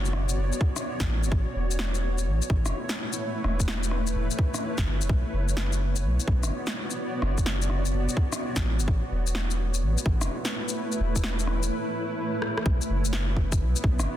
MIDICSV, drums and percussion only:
0, 0, Header, 1, 2, 480
1, 0, Start_track
1, 0, Key_signature, 2, "minor"
1, 0, Tempo, 472441
1, 1338, Time_signature, 4, 2, 24, 8
1, 14396, End_track
2, 0, Start_track
2, 0, Title_t, "Drums"
2, 54, Note_on_c, 9, 82, 42
2, 135, Note_on_c, 9, 37, 59
2, 156, Note_off_c, 9, 82, 0
2, 236, Note_off_c, 9, 37, 0
2, 294, Note_on_c, 9, 82, 55
2, 396, Note_off_c, 9, 82, 0
2, 534, Note_on_c, 9, 82, 46
2, 617, Note_on_c, 9, 36, 98
2, 636, Note_off_c, 9, 82, 0
2, 719, Note_off_c, 9, 36, 0
2, 775, Note_on_c, 9, 37, 64
2, 775, Note_on_c, 9, 82, 56
2, 876, Note_off_c, 9, 37, 0
2, 876, Note_off_c, 9, 82, 0
2, 1017, Note_on_c, 9, 36, 98
2, 1017, Note_on_c, 9, 38, 105
2, 1017, Note_on_c, 9, 82, 31
2, 1118, Note_off_c, 9, 36, 0
2, 1119, Note_off_c, 9, 38, 0
2, 1119, Note_off_c, 9, 82, 0
2, 1256, Note_on_c, 9, 82, 56
2, 1338, Note_on_c, 9, 36, 118
2, 1357, Note_off_c, 9, 82, 0
2, 1439, Note_off_c, 9, 36, 0
2, 1737, Note_on_c, 9, 82, 53
2, 1818, Note_on_c, 9, 38, 105
2, 1839, Note_off_c, 9, 82, 0
2, 1919, Note_off_c, 9, 38, 0
2, 1978, Note_on_c, 9, 82, 42
2, 2080, Note_off_c, 9, 82, 0
2, 2218, Note_on_c, 9, 82, 56
2, 2320, Note_off_c, 9, 82, 0
2, 2458, Note_on_c, 9, 82, 44
2, 2539, Note_on_c, 9, 36, 101
2, 2560, Note_off_c, 9, 82, 0
2, 2640, Note_off_c, 9, 36, 0
2, 2699, Note_on_c, 9, 37, 62
2, 2699, Note_on_c, 9, 82, 53
2, 2801, Note_off_c, 9, 37, 0
2, 2801, Note_off_c, 9, 82, 0
2, 2939, Note_on_c, 9, 38, 108
2, 2939, Note_on_c, 9, 82, 31
2, 3041, Note_off_c, 9, 38, 0
2, 3041, Note_off_c, 9, 82, 0
2, 3179, Note_on_c, 9, 82, 56
2, 3281, Note_off_c, 9, 82, 0
2, 3498, Note_on_c, 9, 37, 55
2, 3600, Note_off_c, 9, 37, 0
2, 3657, Note_on_c, 9, 36, 56
2, 3657, Note_on_c, 9, 82, 50
2, 3737, Note_on_c, 9, 38, 101
2, 3758, Note_off_c, 9, 36, 0
2, 3758, Note_off_c, 9, 82, 0
2, 3839, Note_off_c, 9, 38, 0
2, 3897, Note_on_c, 9, 82, 40
2, 3976, Note_on_c, 9, 37, 56
2, 3998, Note_off_c, 9, 82, 0
2, 4078, Note_off_c, 9, 37, 0
2, 4135, Note_on_c, 9, 82, 54
2, 4237, Note_off_c, 9, 82, 0
2, 4376, Note_on_c, 9, 82, 42
2, 4456, Note_on_c, 9, 36, 97
2, 4478, Note_off_c, 9, 82, 0
2, 4558, Note_off_c, 9, 36, 0
2, 4616, Note_on_c, 9, 37, 60
2, 4616, Note_on_c, 9, 82, 53
2, 4717, Note_off_c, 9, 37, 0
2, 4717, Note_off_c, 9, 82, 0
2, 4855, Note_on_c, 9, 36, 103
2, 4856, Note_on_c, 9, 38, 106
2, 4856, Note_on_c, 9, 82, 29
2, 4957, Note_off_c, 9, 36, 0
2, 4957, Note_off_c, 9, 38, 0
2, 4957, Note_off_c, 9, 82, 0
2, 5094, Note_on_c, 9, 82, 55
2, 5176, Note_on_c, 9, 36, 112
2, 5196, Note_off_c, 9, 82, 0
2, 5278, Note_off_c, 9, 36, 0
2, 5575, Note_on_c, 9, 82, 48
2, 5657, Note_on_c, 9, 38, 100
2, 5676, Note_off_c, 9, 82, 0
2, 5759, Note_off_c, 9, 38, 0
2, 5816, Note_on_c, 9, 82, 40
2, 5918, Note_off_c, 9, 82, 0
2, 6055, Note_on_c, 9, 82, 54
2, 6156, Note_off_c, 9, 82, 0
2, 6296, Note_on_c, 9, 82, 42
2, 6376, Note_on_c, 9, 36, 100
2, 6398, Note_off_c, 9, 82, 0
2, 6478, Note_off_c, 9, 36, 0
2, 6536, Note_on_c, 9, 37, 60
2, 6536, Note_on_c, 9, 82, 52
2, 6638, Note_off_c, 9, 37, 0
2, 6638, Note_off_c, 9, 82, 0
2, 6776, Note_on_c, 9, 38, 99
2, 6776, Note_on_c, 9, 82, 29
2, 6878, Note_off_c, 9, 38, 0
2, 6878, Note_off_c, 9, 82, 0
2, 7016, Note_on_c, 9, 82, 53
2, 7117, Note_off_c, 9, 82, 0
2, 7337, Note_on_c, 9, 37, 59
2, 7439, Note_off_c, 9, 37, 0
2, 7496, Note_on_c, 9, 36, 55
2, 7497, Note_on_c, 9, 82, 46
2, 7579, Note_on_c, 9, 38, 100
2, 7598, Note_off_c, 9, 36, 0
2, 7598, Note_off_c, 9, 82, 0
2, 7681, Note_off_c, 9, 38, 0
2, 7739, Note_on_c, 9, 82, 41
2, 7820, Note_on_c, 9, 37, 58
2, 7841, Note_off_c, 9, 82, 0
2, 7921, Note_off_c, 9, 37, 0
2, 7980, Note_on_c, 9, 82, 52
2, 8082, Note_off_c, 9, 82, 0
2, 8219, Note_on_c, 9, 82, 43
2, 8298, Note_on_c, 9, 36, 92
2, 8320, Note_off_c, 9, 82, 0
2, 8400, Note_off_c, 9, 36, 0
2, 8458, Note_on_c, 9, 37, 64
2, 8458, Note_on_c, 9, 82, 52
2, 8560, Note_off_c, 9, 37, 0
2, 8560, Note_off_c, 9, 82, 0
2, 8698, Note_on_c, 9, 36, 96
2, 8698, Note_on_c, 9, 38, 100
2, 8698, Note_on_c, 9, 82, 29
2, 8799, Note_off_c, 9, 36, 0
2, 8800, Note_off_c, 9, 38, 0
2, 8800, Note_off_c, 9, 82, 0
2, 8937, Note_on_c, 9, 82, 54
2, 9019, Note_on_c, 9, 36, 106
2, 9038, Note_off_c, 9, 82, 0
2, 9121, Note_off_c, 9, 36, 0
2, 9416, Note_on_c, 9, 82, 49
2, 9498, Note_on_c, 9, 38, 97
2, 9518, Note_off_c, 9, 82, 0
2, 9599, Note_off_c, 9, 38, 0
2, 9656, Note_on_c, 9, 82, 41
2, 9758, Note_off_c, 9, 82, 0
2, 9897, Note_on_c, 9, 82, 53
2, 9999, Note_off_c, 9, 82, 0
2, 10138, Note_on_c, 9, 82, 44
2, 10218, Note_on_c, 9, 36, 95
2, 10239, Note_off_c, 9, 82, 0
2, 10320, Note_off_c, 9, 36, 0
2, 10377, Note_on_c, 9, 37, 66
2, 10377, Note_on_c, 9, 82, 51
2, 10479, Note_off_c, 9, 37, 0
2, 10479, Note_off_c, 9, 82, 0
2, 10617, Note_on_c, 9, 38, 99
2, 10617, Note_on_c, 9, 82, 30
2, 10718, Note_off_c, 9, 38, 0
2, 10718, Note_off_c, 9, 82, 0
2, 10857, Note_on_c, 9, 82, 53
2, 10958, Note_off_c, 9, 82, 0
2, 11095, Note_on_c, 9, 82, 30
2, 11197, Note_off_c, 9, 82, 0
2, 11337, Note_on_c, 9, 36, 54
2, 11337, Note_on_c, 9, 82, 54
2, 11416, Note_on_c, 9, 38, 100
2, 11438, Note_off_c, 9, 82, 0
2, 11439, Note_off_c, 9, 36, 0
2, 11517, Note_off_c, 9, 38, 0
2, 11575, Note_on_c, 9, 82, 44
2, 11657, Note_on_c, 9, 37, 62
2, 11677, Note_off_c, 9, 82, 0
2, 11759, Note_off_c, 9, 37, 0
2, 11816, Note_on_c, 9, 82, 57
2, 11918, Note_off_c, 9, 82, 0
2, 12619, Note_on_c, 9, 37, 56
2, 12721, Note_off_c, 9, 37, 0
2, 12777, Note_on_c, 9, 37, 73
2, 12860, Note_on_c, 9, 36, 117
2, 12878, Note_off_c, 9, 37, 0
2, 12962, Note_off_c, 9, 36, 0
2, 13018, Note_on_c, 9, 82, 32
2, 13120, Note_off_c, 9, 82, 0
2, 13259, Note_on_c, 9, 82, 54
2, 13338, Note_on_c, 9, 38, 108
2, 13360, Note_off_c, 9, 82, 0
2, 13440, Note_off_c, 9, 38, 0
2, 13580, Note_on_c, 9, 36, 59
2, 13681, Note_off_c, 9, 36, 0
2, 13739, Note_on_c, 9, 36, 98
2, 13739, Note_on_c, 9, 82, 60
2, 13840, Note_off_c, 9, 36, 0
2, 13841, Note_off_c, 9, 82, 0
2, 13979, Note_on_c, 9, 82, 47
2, 14060, Note_on_c, 9, 36, 105
2, 14080, Note_off_c, 9, 82, 0
2, 14161, Note_off_c, 9, 36, 0
2, 14219, Note_on_c, 9, 37, 69
2, 14219, Note_on_c, 9, 82, 56
2, 14320, Note_off_c, 9, 37, 0
2, 14320, Note_off_c, 9, 82, 0
2, 14396, End_track
0, 0, End_of_file